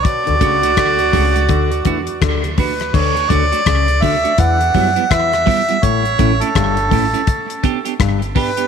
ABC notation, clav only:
X:1
M:4/4
L:1/16
Q:"Swing 16ths" 1/4=83
K:D
V:1 name="Clav" clef=bass
z D, C,2 D,2 C,2 D,2 E, z D,2 z2 | D,2 D, z C,2 D, z E,2 F, z E,2 z2 | A,,2 A,, z G,,2 A,, z4 z G,,2 z2 |]